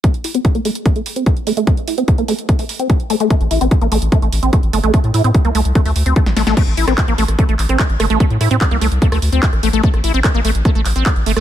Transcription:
<<
  \new Staff \with { instrumentName = "Acid bass" } { \time 4/4 \key a \phrygian \tempo 4 = 147 a16 r16 e'16 c'16 r16 bes16 a16 r16 a16 a16 r16 c'16 a16 r16 a16 a16 | a16 r16 e'16 c'16 r16 bes16 a16 r16 a16 a16 r16 c'16 a16 r16 a16 a16 | a16 r16 e'16 c'16 r16 bes16 a16 r16 a16 a16 r16 c'16 a16 r16 a16 a16 | a16 r16 e'16 c'16 r16 bes16 a16 r16 a16 a16 r16 c'16 a16 r16 a16 a16 |
a16 r16 e'16 c'16 r16 bes16 a16 r16 a16 a16 r16 c'16 a16 r16 a16 a16 | r8 e'16 c'16 r16 bes16 a16 r16 a16 a16 r16 c'16 r8 a16 a16 | a16 r16 e'16 c'16 r16 bes16 a16 r16 a16 a16 r16 c'16 a16 r16 a16 a16 | }
  \new Staff \with { instrumentName = "Analog synth bass" } { \clef bass \time 4/4 \key a \phrygian r1 | r1 | r16 a,,16 a,,16 a,,16 r16 a,,16 a,,16 a,,16 r16 a,,16 a,,16 a,,16 r16 a,,16 g,,16 a,,16 | r16 a,16 a,16 a,16 r16 c,16 c,16 c,16 r16 d,16 d,16 d,16 r16 a,,16 a,,16 a,,16 |
r16 a,,16 a,,16 a,,16 r16 a,,16 a,,16 a,,16 r16 a,,16 a,,16 a,,16 r16 a,,16 g,,16 a,,16 | r16 a,16 a,16 a,16 r16 c,16 c,16 c,16 r16 d,16 d,16 d,16 r16 a,,16 a,,16 a,,16 | r16 a,,16 a,,16 a,,16 r16 a,,16 a,,16 a,,16 r16 a,,16 a,,16 a,,16 r16 a,,16 g,,16 a,,16 | }
  \new DrumStaff \with { instrumentName = "Drums" } \drummode { \time 4/4 <hh bd>16 hh16 hho16 hh16 <hh bd>16 hh16 hho16 hh16 <hh bd>16 hh16 hho16 hh16 <hh bd>16 hh16 hho16 hh16 | <hh bd>16 hh16 hho16 hh16 <hh bd>16 hh16 hho16 hh16 <hh bd>16 hho16 hho16 hh16 <hh bd>16 hh16 hho16 hh16 | <hh bd>16 hh16 hho16 hh16 <hh bd>16 hh16 hho16 hh16 <hh bd>16 hh16 hho16 hh16 <hh bd>16 hh16 hho16 hh16 | <hh bd>16 hh16 hho16 hh16 <hh bd>16 hh16 hho16 hh16 <hh bd>16 hho16 hho16 hh16 <hh bd>16 <hh sn>16 <hho sn>16 <hh sn>16 |
<cymc hh bd ss>16 hh16 hho16 <hh ss>16 <hc hh bd>16 hh16 hho16 <hh ss>16 <hh bd>16 hh16 <hc hho>16 <hh ss>16 <hc hh bd>16 hh16 <hho ss>16 hh16 | <hh bd>16 hh16 <hho ss>16 hh16 <hc hh bd>16 hh16 <hho ss>16 hh16 <hh bd>16 <hho ss>16 hho16 hh16 <hc hh bd>16 <hh ss>16 hho16 hh16 | <hh bd>16 <hh ss>16 hho16 hh16 <hc hh bd ss>16 hh16 hho16 hh16 <hh bd ss>16 hh16 <hc hho>16 hh16 <hc hh bd ss>16 hh16 hho16 <hh ss>16 | }
>>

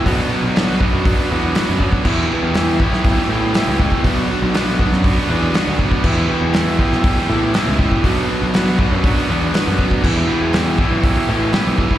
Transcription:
<<
  \new Staff \with { instrumentName = "Distorted electric guitar" } { \time 4/4 \key e \minor \tempo 4 = 120 <b, fis b d' fis' b'>8 <b d' fis' b'>8 <b d' fis' b'>8 <b, fis b d' fis' b'>8 <b d' fis' b'>8 <b d' fis' b'>8 <b d' fis' b'>8 <b, fis b d' fis' b'>8 | <e b e' g' b'>8 <e' g' b'>8 <b e' g' b'>8 <e b e' g' b'>8 <b e' g' b'>8 <e' g' b'>8 <b e' g' b'>8 <e b e' g' b'>8 | <b, fis b d' fis' b'>8 <b d' fis' b'>8 <b d' fis' b'>8 <b, fis b d' fis' b'>8 <b d' fis' b'>8 <b d' fis' b'>8 <b d' fis' b'>8 <b, fis b d' fis' b'>8 | <e b e' g' b'>8 <e' g' b'>8 <b e' g' b'>8 <e b e' g' b'>8 <b e' g' b'>8 <e' g' b'>8 <b e' g' b'>8 <e b e' g' b'>8 |
<b, fis b d' fis' b'>8 <b d' fis' b'>8 <b d' fis' b'>8 <b, fis b d' fis' b'>8 <b d' fis' b'>8 <b d' fis' b'>8 <b d' fis' b'>8 <b, fis b d' fis' b'>8 | <e b e' g' b'>8 <e' g' b'>8 <b e' g' b'>8 <e b e' g' b'>8 <b e' g' b'>8 <e' g' b'>8 <b e' g' b'>8 <e b e' g' b'>8 | }
  \new Staff \with { instrumentName = "Distorted electric guitar" } { \time 4/4 \key e \minor <b, fis b d' fis'>8 <b d' fis'>8 <b, fis b d' fis'>8 <b d' fis'>4 <b d' fis'>8 <fis b d' fis'>4 | <e b e' g'>8 <b e' g'>8 <e b e' g'>8 <b e' g'>4 <b e' g'>8 <e b e' g'>4 | <b, fis b d' fis'>8 <b d' fis'>8 <b, fis b d' fis'>8 <b d' fis'>4 <b d' fis'>8 <fis b d' fis'>4 | <e b e' g'>8 <b e' g'>8 <e b e' g'>8 <b e' g'>4 <b e' g'>8 <e b e' g'>4 |
<b, fis b d' fis'>8 <b d' fis'>8 <b, fis b d' fis'>8 <b d' fis'>4 <b d' fis'>8 <fis b d' fis'>4 | <e b e' g'>8 <b e' g'>8 <e b e' g'>8 <b e' g'>4 <b e' g'>8 <e b e' g'>4 | }
  \new Staff \with { instrumentName = "Distorted electric guitar" } { \clef bass \time 4/4 \key e \minor <b, fis b>4 <b, fis b>8 <b, fis b>8 <b, fis b>4 <b, fis b>8 <b, fis b>8 | <e, b, e>4 <e, b, e>8 <e, b, e>8 <e, b, e>4 <e, b, e>8 <e, b, e>8 | <b, fis b>4 <b, fis b>8 <b, fis b>8 <b, fis b>4 <b, fis b>8 <b, fis b>8 | <e, b, e>4 <e, b, e>8 <e, b, e>8 <e, b, e>4 <e, b, e>8 <e, b, e>8 |
<b, fis b>4 <b, fis b>8 <b, fis b>8 <b, fis b>4 <b, fis b>8 <b, fis b>8 | <e, b, e>4 <e, b, e>8 <e, b, e>8 <e, b, e>4 <e, b, e>8 <e, b, e>8 | }
  \new Staff \with { instrumentName = "Picked electric bass" } { \clef bass \time 4/4 \key e \minor b,,8 r16 b,,4 fis,8 r16 e,8 r16 fis,8 r16 | e,8 r16 e,4 b,,8 r16 a,8 r16 cis,8 r16 | b,,8 r16 b,,4 fis,8 r16 e,8 r16 d,8 r16 | e,8 r16 e,4 b,,8 r16 a,8 r16 cis,8 r16 |
b,,8 r16 b,,4 fis,8 r16 e,8 r16 fis,8 r16 | e,8 r16 e,4 b,,8 r16 a,8 r16 b,,8 r16 | }
  \new DrumStaff \with { instrumentName = "Drums" } \drummode { \time 4/4 <hho bd>4 <hho sn>8 bd8 <hho bd>4 <hho sn>8 bd16 bd16 | <cymc bd>4 <hho sn>8 bd16 sn16 <hho bd>4 <hho sn>8 bd16 bd16 | <hho bd>4 <hho sn>8 bd16 sn16 <hho bd>4 <hho sn>8 bd16 bd16 | <cymc bd>4 <hho sn>8 bd16 sn16 <hho bd>4 <hho sn>8 bd16 bd16 |
<hho bd>4 <hho sn>8 bd8 <hho bd>4 <hho sn>8 bd16 bd16 | <cymc bd>4 <hho sn>8 bd8 <hho bd>4 <hho sn>8 bd16 bd16 | }
>>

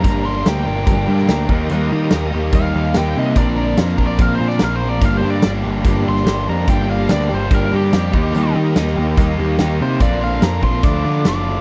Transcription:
<<
  \new Staff \with { instrumentName = "Lead electric guitar" } { \time 4/4 \key g \minor \tempo 4 = 144 bes''8 c'''8 g''2. | r2 f''4 g''8 ees''8 | d''4 \tuplet 3/2 { r4 d''8 f''8 c''8 d''8 f''8 c''8 d''8 } | \tuplet 3/2 { f''8 c''8 d''8 } r4. c'''4 bes''8 |
g''8 f''8 d''8 c''8 bes'8 g'4.~ | g'8 r2. c''8 | d''8 f''8 bes''8 c'''8 d'''4 d'''4 | }
  \new Staff \with { instrumentName = "Tonewheel organ" } { \time 4/4 \key g \minor <g' bes' d''>2.~ <g' bes' d''>8 <g' bes' ees''>8~ | <g' bes' ees''>1 | <d' bes' c''>1 | <d' g' bes'>1~ |
<d' g' bes'>2.~ <d' g' bes'>8 <ees' g' bes'>8~ | <ees' g' bes'>1 | <c' d' bes'>2 <d' f' a'>2 | }
  \new Staff \with { instrumentName = "Twelve-string acoustic guitar" } { \time 4/4 \key g \minor <g, d g bes d' bes'>4 <g bes d' bes'>8 <g bes d' bes'>8 <g, d g bes d' bes'>4 <g bes d' bes'>8 <bes ees' bes'>8 | <ees g bes ees' bes'>4 <g bes ees' bes'>8 <bes ees' bes'>8 <ees g bes ees' bes'>4 <g bes ees' bes'>4 | <bes, d f c' d' bes'>4 <f c' d' bes'>8 <f c' d' bes'>8 <bes, d f c' d' bes'>4 <f c' d' bes'>8 <f c' d' bes'>8 | <g, d g bes d' g'>4 <g bes d' g'>8 <g bes d' g'>8 <g, d g bes d' g'>4 <g bes d' g'>8 <g bes d' g'>8 |
<g, d g bes d' g'>4 <g bes d' g'>8 <g bes d' g'>8 <g, d g bes d' g'>4 <g bes d' g'>8 <bes ees' g'>8 | <ees g bes ees' g'>4 <g bes ees' g'>8 <bes ees' g'>8 <ees g bes ees' g'>4 <g bes ees' g'>8 <bes ees' g'>8 | <bes, d f c' d' bes'>4 <f c' d' bes'>8 <f c' d' bes'>8 <d f d' f' a'>4 <f d' f' a'>8 <d' f' a'>8 | }
  \new Staff \with { instrumentName = "Overdriven electric guitar" } { \time 4/4 \key g \minor <g, d g bes d' bes'>8 <g bes d' bes'>8 <g bes d' bes'>8 <g bes d' bes'>8 <g, d g bes d' bes'>8 <g bes d' bes'>8 <g bes d' bes'>8 <ees g bes ees' g'>8 | <ees g bes ees' g'>8 <bes ees' g'>8 <g bes ees' g'>8 <bes ees' g'>8 <ees g bes ees' g'>8 <bes ees' g'>8 <g bes ees' g'>4 | <bes, d f bes d' bes'>8 <f bes d' bes'>8 <f bes d' bes'>8 <f bes d' bes'>8 <bes, d f bes d' bes'>8 <f bes d' bes'>8 <f bes d' bes'>4 | <g, d g bes d' g'>8 <g bes d' g'>8 <g bes d' g'>8 <g bes d' g'>8 <g, d g bes d' g'>8 <g bes d' g'>8 <g bes d' g'>4 |
<g, d g bes d' g'>8 <g bes d' g'>8 <g bes d' g'>8 <g bes d' g'>8 <g, d g bes d' g'>8 <g bes d' g'>8 <g bes d' g'>8 <ees bes ees' g'>8 | <ees bes ees' g'>8 <bes ees' g'>8 <ees bes ees' g'>8 <bes ees' g'>8 <ees bes ees' g'>8 <bes ees' g'>8 <ees bes ees' g'>4 | <bes, d bes d' f'>8 <bes d' f'>8 <d bes d' f'>8 <bes d' f'>8 <d a d' f'>8 <a d' f'>8 <d a d' f'>4 | }
  \new Staff \with { instrumentName = "Picked electric bass" } { \clef bass \time 4/4 \key g \minor g,,4 d,8 g,,8 g,,8 g,8 d,8 ees,8 | ees,8 ees8 ees,8 ees,8 ees,8 ees,8 ees,8 c8 | bes,,4 f,8 bes,,8 bes,,8 bes,8 bes,,4 | g,,8 g,8 g,,8 g,,8 g,,8 g,,8 g,,8 f,8 |
g,,4 d,8 g,,8 g,,8 g,8 f,8 ees,8 | ees,8 ees8 ees,8 ees,8 ees,8 ees,8 ees,8 c8 | bes,,4 f,8 bes,,8 d,8 d8 fis,,4 | }
  \new DrumStaff \with { instrumentName = "Drums" } \drummode { \time 4/4 <hh bd>4 <hh sn>4 <hh bd>8. sn16 <hh sn>8 bd8 | hh4 <hh sn>4 <hh bd>4 <hh sn>4 | <hh bd>4 <hh sn>16 sn16 bd8 <hh bd>8. sn16 <hh sn>4 | <hh bd>4 <hh sn>4 <hh bd>8. sn16 <hh sn>4 |
<hh bd>4 <hh sn>16 sn8. <hh bd>4 <hh sn>8 bd8 | hh4 <hh sn>4 <hh bd>4 <hh sn>4 | <hh bd>4 <hh sn>8 bd8 <hh bd>4 <hh sn>4 | }
>>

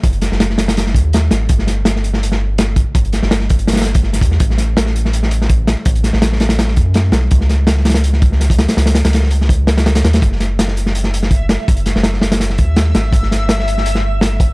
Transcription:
<<
  \new Staff \with { instrumentName = "Synth texture" } { \time 4/4 \key e \major \tempo 4 = 165 r1 | r1 | r1 | r1 |
r1 | r1 | r1 | <e'' e'''>1~ |
<e'' e'''>1~ | <e'' e'''>1 | }
  \new Staff \with { instrumentName = "Sub bass" } { \clef bass \time 4/4 \key e \major fis,,8. fis,,4.~ fis,,16 dis,4 gis,,8 | g,,2.~ g,,8. r16 | g,,8. g,,2~ g,,8. e,8 | a,,2.~ a,,8. r16 |
a,,8. a,,4.~ a,,16 fis,4 b,,8 | cis,2.~ cis,8. r16 | cis,8. cis,2~ cis,8. dis,8 | fis,,2.~ fis,,8. r16 |
fis,,8. fis,,4.~ fis,,16 dis,4 gis,,8 | g,,2.~ g,,8. r16 | }
  \new DrumStaff \with { instrumentName = "Drums" } \drummode { \time 4/4 <hh bd>16 hh16 <hh sn>16 sn16 <hh sn>16 sn16 <hh sn>16 <hh sn>16 <hh sn>16 sn16 <hh bd>8 <hh sn>8 <hh sn>8 | <hh bd>16 sn16 <hh sn>8 <hh sn>16 sn16 hh16 sn16 hh16 sn8. <hh sn>8 <hh bd>8 | <hh bd>16 hh16 <hh sn>16 sn16 <hh sn>16 sn16 <hh bd>16 hh16 <hh sn>32 <hh sn>32 <hh sn>32 <hh sn>32 <hh sn>16 <hh bd>16 sn16 <hh sn>16 <hh bd>16 sn16 | <hh bd>16 sn16 <hh sn>8 <hh sn>16 sn16 hh16 sn16 hh16 sn16 hh16 sn16 <hh bd>8 <hh sn>8 |
<hh bd>16 hh16 <hh sn>16 sn16 <hh sn>16 sn16 <hh sn>16 <hh sn>16 <hh sn>16 sn16 <hh bd>8 <hh sn>8 <hh sn>8 | <hh bd>16 sn16 <hh sn>8 <hh sn>16 sn16 <hh sn>32 <hh sn>32 <hh sn>16 hh16 sn16 <hh bd>16 sn16 <hh sn>16 <hh bd>16 <hh sn>16 <hh sn>16 | <hh sn>16 <hh sn>16 <hh sn>16 <hh sn>16 <hh sn>16 sn16 hh16 sn16 <hh bd>8 <hh sn>16 <hh sn>16 <hh sn>16 <hh sn>16 <hh sn>16 <hh sn>16 | <hh bd>16 sn16 <hh sn>8 <hh sn>16 sn16 hh16 sn16 hh16 sn16 hh16 sn16 <hh bd>8 <hh sn>8 |
<hh bd>16 hh16 <hh sn>16 sn16 <hh sn>16 sn16 <hh sn>16 <hh sn>16 <hh sn>16 sn16 <hh bd>8 <hh sn>8 <hh sn>8 | <hh bd>16 sn16 <hh sn>8 <hh sn>16 sn16 hh16 sn16 hh16 sn8. <hh sn>8 <hh bd>8 | }
>>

